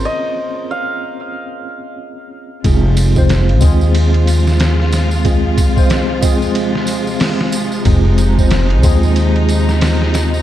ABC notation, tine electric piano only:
X:1
M:4/4
L:1/16
Q:"Swing 16ths" 1/4=92
K:Fm
V:1 name="Tine electric piano"
z16 | [A,CFA]3 [A,CFc]3 [A,CFA]8- [A,CFA]2 | [A,CFA]3 [A,CFc]3 [A,CFA]8- [A,CFA]2 | [A,CFA]3 [A,CFc]3 [A,CFA]8- [A,CFA]2 |]